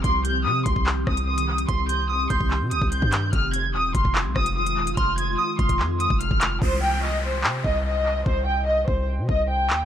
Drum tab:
HH |x-x---x----x-x-x|x-x---x---x-x-x-|x-x---x----x-x-x|x-x---xx--x-x-x-|
CP |--------x-------|--------x-----x-|--------x-------|--------x-----x-|
SD |----------r-----|----------------|----------r-----|----------------|
BD |o-----oo--o-----|o-----oo---o-o--|o-----oo--o-----|o-----oo---o-o--|

HH |----------------|----------------|
CP |--------x-------|--------------x-|
SD |----------------|----------------|
BD |o---------o-----|o-----o---o-----|